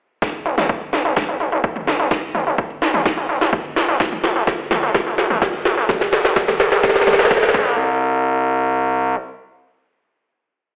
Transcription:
0.22 kick, snare, closed hi-hat
0.34 closed hi-hat
0.46 analog synth bass C2, open hi-hat
0.58 analog synth bass C2, snare, closed hi-hat, mid tom
0.69 kick, closed hi-hat
0.81 closed hi-hat
0.93 analog synth bass C2, snare, open hi-hat
1.05 analog synth bass C2, closed hi-hat
1.17 kick, snare, closed hi-hat, mid tom
1.29 analog synth bass C2, closed hi-hat
1.40 analog synth bass C2, open hi-hat
1.52 analog synth bass C2, closed hi-hat
1.64 kick, closed hi-hat
1.76 closed hi-hat, mid tom
1.87 analog synth bass C2, snare, open hi-hat
2.00 analog synth bass C2, closed hi-hat
2.11 kick, snare, closed hi-hat
2.23 closed hi-hat
2.35 analog synth bass C2, open hi-hat, mid tom
2.47 analog synth bass C2, closed hi-hat
2.58 kick, closed hi-hat
2.70 closed hi-hat
2.82 analog synth bass C2, snare, open hi-hat
2.94 analog synth bass C2, closed hi-hat, mid tom
3.06 kick, snare, closed hi-hat
3.18 analog synth bass C2, closed hi-hat
3.29 analog synth bass C2, open hi-hat
3.41 analog synth bass C2, snare, closed hi-hat
3.53 kick, closed hi-hat, mid tom
3.65 closed hi-hat
3.76 analog synth bass C2, snare, open hi-hat
3.88 analog synth bass C2, closed hi-hat
4.00 kick, snare, closed hi-hat
4.12 closed hi-hat, mid tom
4.24 analog synth bass G#1, snare, open hi-hat
4.36 analog synth bass G#1, closed hi-hat
4.47 kick, snare, closed hi-hat
4.59 closed hi-hat
4.71 analog synth bass G#1, snare, open hi-hat, mid tom
4.83 analog synth bass G#1, closed hi-hat
4.95 kick, snare, closed hi-hat
5.07 analog synth bass G#1, closed hi-hat
5.18 analog synth bass G#1, snare, open hi-hat
5.30 analog synth bass G#1, closed hi-hat, mid tom
5.42 kick, snare, closed hi-hat
5.54 closed hi-hat
5.65 analog synth bass G#1, snare, open hi-hat
5.77 analog synth bass G#1, closed hi-hat
5.89 kick, snare, closed hi-hat, mid tom
6.01 snare, closed hi-hat
6.13 analog synth bass F1, snare, open hi-hat
6.25 analog synth bass F1, snare, closed hi-hat
6.36 kick, snare, closed hi-hat
6.48 snare, closed hi-hat, mid tom
6.60 analog synth bass F1, snare, open hi-hat
6.72 analog synth bass F1, snare, closed hi-hat
6.83 kick, snare, closed hi-hat
6.89 snare
6.96 analog synth bass F1, snare, closed hi-hat
7.01 snare
7.07 analog synth bass D#1, snare, open hi-hat, mid tom
7.13 snare
7.19 analog synth bass F1, snare, closed hi-hat
7.25 snare
7.31 kick, snare, closed hi-hat
7.37 snare
7.43 snare, closed hi-hat
7.49 snare
7.54 analog synth bass C2, kick

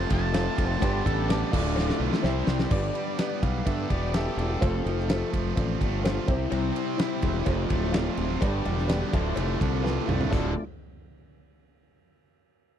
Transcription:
Already playing: distorted electric guitar F2 C3, overdriven electric guitar F2 C3 F3 A3 C4 F4, tonewheel organ A3 F4 C5, upright piano F4 A4 C5 F5
0.09 fingered electric bass F1, distorted electric guitar F2 C3 F3 A3 C4 F4, lead electric guitar A5, kick, ride
0.32 distorted electric guitar F2 C3 F3 A3 C4 F4, upright piano F4 A4 C5 F5, snare, ride, cowbell
0.56 fingered electric bass F1, distorted electric guitar F2 C3 F3, kick, ride
0.80 fingered electric bass G1, distorted electric guitar G2 D3 G3 B3 D4 G4, overdriven electric guitar G2 D3 G3 B3 D4, tonewheel organ B3 G4 D5, lead electric guitar F4, upright piano G4 B4 D5 G5, kick, ride, cowbell
0.84 overdriven electric guitar G4
1.05 fingered electric bass A1, distorted electric guitar G2 D3 G3, lead electric guitar A4, kick, ride
1.28 distorted electric guitar G2 D3 G3 B3 D4 G4, upright piano G4 B4 D5 A5, lead electric guitar D5, snare, ride, cowbell
1.51 fingered electric bass D1, overdriven electric guitar D2 A2 D3 A3 F4, distorted electric guitar D2 A2 D3 A3 F4, tonewheel organ A3 F4 D5, upright piano F4 A4 D5 F5, lead electric guitar D5, kick, crash
1.76 distorted electric guitar D2 A2 D3, snare, cowbell
1.90 snare
1.98 fingered electric bass B1, distorted electric guitar D2 A2 D3 A3 F4
2.13 snare
2.22 fingered electric bass C2, distorted electric guitar C3 G3 C4 E4 G4 C5, overdriven electric guitar C3 G3 C4 E4 G4 C5, tonewheel organ G3 E4 C5, upright piano E4 G4 C5 E5, snare, cowbell
2.42 tonewheel organ C4 D4
2.47 fingered electric bass C2, distorted electric guitar C3 G3 C4, tonewheel organ E4 F4, snare
2.54 tonewheel organ G4 A4
2.58 tonewheel organ B4, snare
2.62 tonewheel organ C5 D5
2.68 fingered electric bass G1, overdriven electric guitar G2 D3 G3 B3 D4, distorted electric guitar G2, upright piano G4 B4 D5, lead electric guitar D5, tonewheel organ E5 F5, kick, crash
2.72 tonewheel organ B3 G4 D5, overdriven electric guitar G4
2.95 distorted electric guitar G3, ride
3.17 distorted electric guitar B3, upright piano G4 B4 D5, snare, ride
3.42 fingered electric bass B1, distorted electric guitar G3, lead electric guitar F5, kick, ride
3.65 fingered electric bass G2, distorted electric guitar D4, upright piano G4 B4 E5, lead electric guitar A4, kick, ride
3.89 fingered electric bass E1, overdriven electric guitar G2 D3 G3 B3 D4 G4, distorted electric guitar B3, lead electric guitar D5, kick, ride
4.12 overdriven electric guitar G2 D3 G3 B3 D4 G4, upright piano G4 B4 E5, distorted electric guitar G4, lead electric guitar A4, snare, ride
4.37 fingered electric bass E1, distorted electric guitar D4, lead electric guitar A4, ride
4.60 fingered electric bass F1, distorted electric guitar F2, overdriven electric guitar F2 C3 F3 A3 C4 F4, tonewheel organ C4 A4 F5, upright piano F4 A4 C5, kick, ride
4.85 fingered electric bass F1, distorted electric guitar F3, ride
4.99 snare
5.08 distorted electric guitar A3, upright piano F4 A4 C5, snare, ride
5.32 fingered electric bass F1, distorted electric guitar F3, kick, ride
5.56 fingered electric bass A1, distorted electric guitar C4, upright piano F4 A4 D5, kick, ride
5.79 fingered electric bass G1, overdriven electric guitar F2 C3 F3 A3 C4 F4, distorted electric guitar A3, kick, ride
6.02 overdriven electric guitar F2 C3 F3 A3 C4 F4, distorted electric guitar F4, upright piano F4 A4 C5, snare, ride
6.27 fingered electric bass C2, overdriven electric guitar C3 G3 C4 E4 G4 C5, distorted electric guitar C3, tonewheel organ C4 G4 E5, upright piano E4 G4 C5, kick, ride
6.51 fingered electric bass C2, distorted electric guitar C3 G3 C4, ride, cowbell
6.75 distorted electric guitar C4, ride
6.97 upright piano E4 G4, distorted electric guitar E4, snare, ride, cowbell
7.22 fingered electric bass E1, distorted electric guitar C4, kick, ride
7.45 fingered electric bass F1, overdriven electric guitar F2 C3 F3 A3 C4 F4, distorted electric guitar F2 C3 F3, tonewheel organ C4 A4 F5, upright piano F4 A4 C5, kick, ride, cowbell
7.69 fingered electric bass D1, distorted electric guitar A3, kick, ride
7.92 upright piano F4 A4 D5, distorted electric guitar F4, snare, ride, cowbell
8.17 fingered electric bass D1, distorted electric guitar C4, ride
8.40 fingered electric bass G1, overdriven electric guitar G2 D3 G3 B3 D4 G4, distorted electric guitar G2 D3 G3, tonewheel organ B3 G4 D5, upright piano G4 B4 D5, kick, ride, cowbell
8.65 fingered electric bass E1, distorted electric guitar G3, ride
8.78 snare
8.87 distorted electric guitar B3, upright piano G4 B4 D5, snare, ride, cowbell
9.11 fingered electric bass D1, distorted electric guitar D2 A2 D3, overdriven electric guitar D2 A2 D3 A3 F4, tonewheel organ A3 F4 D5, upright piano F4 A4 D5, kick, ride
9.35 fingered electric bass F1, distorted electric guitar A3, ride, cowbell
9.59 fingered electric bass C2, distorted electric guitar D3, upright piano A5, kick, ride
9.82 upright piano F4 A4 B4 G5, distorted electric guitar F4, snare, cowbell
10.06 fingered electric bass C2, distorted electric guitar D2 A2 D3 A3, upright piano F5, mid tom
10.21 floor tom
10.30 fingered electric bass D1, distorted electric guitar D2 A2 D3, overdriven electric guitar D2 A2 D3 A3 F4, tonewheel organ A3 F4 D5, upright piano F4 A4 D5, lead electric guitar A4, kick, splash, cowbell

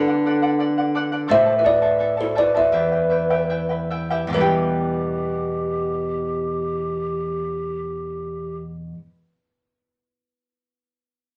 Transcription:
Already playing: nylon-string guitar D3, pan flute D4, kalimba A4
0.08 charango D5 F#5
0.26 charango A4 D5 F#5
0.42 charango A4 D5 F#5
0.59 charango A4 D5 F#5
0.78 charango D5 F#5
0.95 charango A4 D5 F#5
1.12 charango A4 D5 F#5
1.28 nylon-string guitar A2, charango E4 A4 C5 E5 A5, pan flute C5, kalimba E5
1.46 charango E4 A4 A5
1.58 pan flute B4, kalimba E5
1.64 charango E4 A4 E5 A5, pan flute B4, kalimba D5
1.82 charango E4 A4 C5 E5 A5
1.99 charango E4 A4 E5 A5
2.17 charango E4 A4 A5, pan flute A4, kalimba C5
2.35 charango E4 A4 E5 A5, pan flute B4, kalimba D5
2.55 charango E4 A4 C5 E5 A5, pan flute B4, kalimba E5
2.72 nylon-string guitar E2, charango E4 G4 B4 E5 G5
2.92 charango E4 B4 G5
3.10 charango E4 B4 E5 G5
3.30 charango E4 G4 B4 E5 G5
3.50 charango E4 B4 E5 G5
3.69 charango E4 B4 G5
3.91 charango E4 B4 E5 G5
4.10 charango E4 G4 B4 E5 G5
4.27 nylon-string guitar E2 B2, charango G4
4.33 nylon-string guitar E3 G3, charango E4 E5, pan flute G4, kalimba B4
4.38 nylon-string guitar B3 G4, charango B4 G5

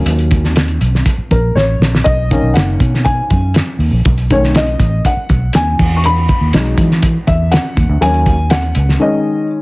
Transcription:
Already playing: upright piano F#3 A#3 C#4
0.06 fingered electric bass D#2, closed hi-hat
0.19 closed hi-hat
0.31 kick, closed hi-hat
0.44 snare
0.56 snare, closed hi-hat
0.68 closed hi-hat
0.81 fingered electric bass B1, closed hi-hat
0.95 snare
1.06 kick, closed hi-hat
1.18 muted fingered electric bass stroke
1.31 fingered electric bass A#1, upright piano A#4, kick, closed hi-hat
1.55 fingered electric bass A1, upright piano C#5, snare
1.79 fingered electric bass A#1, snare
1.95 snare
2.04 fingered electric bass B1, upright piano D#5, kick, closed hi-hat
2.31 upright piano D#3 A#3 C#4, kick, closed hi-hat
2.42 fingered electric bass B1
2.54 fingered electric bass F#1, upright piano F#5, snare, closed hi-hat
2.80 fingered electric bass B2, kick, closed hi-hat
2.95 snare
3.05 upright piano G#5, kick, closed hi-hat
3.30 fingered electric bass F#2, kick, closed hi-hat
3.54 snare, closed hi-hat
3.79 fingered electric bass D#2, open hi-hat
3.91 fingered electric bass A#1
4.05 fingered electric bass B1, kick, closed hi-hat
4.18 closed hi-hat
4.30 upright piano D#3 A3 C#4 C#5, kick, closed hi-hat
4.44 snare
4.55 upright piano D#5, snare, closed hi-hat
4.67 closed hi-hat
4.79 fingered electric bass A1, kick, closed hi-hat
5.05 upright piano F#5, kick, closed hi-hat
5.17 muted fingered electric bass stroke
5.29 fingered electric bass B1, kick, closed hi-hat
5.53 fingered electric bass D#2, upright piano G#5, snare, closed hi-hat
5.79 fingered electric bass E2, kick, crash
5.96 upright piano C#6
6.04 upright piano B5, closed hi-hat
6.16 closed hi-hat
6.29 kick, closed hi-hat
6.41 fingered electric bass D#2
6.53 fingered electric bass B1, upright piano F#3 G#3 D#4, snare, closed hi-hat
6.65 closed hi-hat
6.77 fingered electric bass E3, kick, closed hi-hat
6.91 snare
7.03 kick, closed hi-hat
7.27 fingered electric bass E2, upright piano E5, kick, closed hi-hat
7.51 upright piano F#5, snare, closed hi-hat
7.77 fingered electric bass D#2, kick, closed hi-hat
7.89 fingered electric bass D2
8.01 fingered electric bass D#2, upright piano F#3 A#3 C#4 G#5, closed hi-hat
8.14 closed hi-hat
8.26 kick, closed hi-hat
8.50 upright piano F#5, snare, closed hi-hat
8.62 closed hi-hat
8.75 fingered electric bass C#2, closed hi-hat
8.89 snare
8.99 upright piano D#3 G#3 C#4 D#5

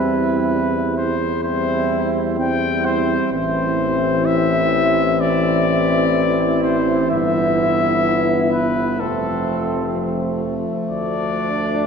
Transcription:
Already playing: bass trombone E2, trombone G3, french horn C4, flugelhorn E4, trumpet B4
0.98 trumpet C5
1.43 trombone G3, french horn C4, flugelhorn E4, trumpet C5
2.39 trombone G3, french horn C4, flugelhorn E4, trumpet G5
2.85 trumpet C5
3.31 bass trombone A1, trombone E3, french horn C4, flugelhorn E4, trumpet C5
4.26 trumpet E5
5.21 trumpet D5
6.64 trumpet C5
7.11 bass trombone G1, french horn B3, trumpet E5
8.53 trumpet B4
9.00 bass trombone F1, trombone F3, french horn A3, flugelhorn C4, trumpet A4
10.91 bass trombone D2, flugelhorn D4, trumpet D5

